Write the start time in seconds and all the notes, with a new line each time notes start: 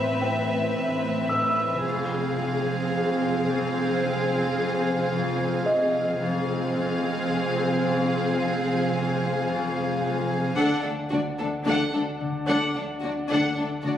Already playing: A1 A2 A3 C4 B4 E5 B5
0.21 A2 G5
0.75 A2
1.29 A2 E6
1.83 F1 F2 C4 G#4 C5 F5
2.39 F2
2.94 F2
3.48 F2
4.02 F3
4.57 F2
5.12 F2
5.66 F2 D#5
6.19 F1 F2 C4 G#4 C5 F5 G#5
6.76 F2
7.30 F2
7.85 F2
8.40 F3
8.95 F2
9.48 F2
10.03 F2
10.56 D2 D3 D4 A4 D5 F#5 A5
10.84 D2 D4 A4
11.10 D2 D3 D4 F#4 D5
11.39 D2 D4 A4
11.65 D2 D3 D4 A4 F#5
11.93 D2 D4 A4
12.21 D3
12.48 D2 D4 A4 F#5
12.74 D2 D4 A4
13.01 D2 D4 F#4
13.05 D5
13.29 D2 D3 D4 A4 F#5
13.55 D2 D4
13.60 A4
13.82 D2 D3 D4 F#4
13.87 D5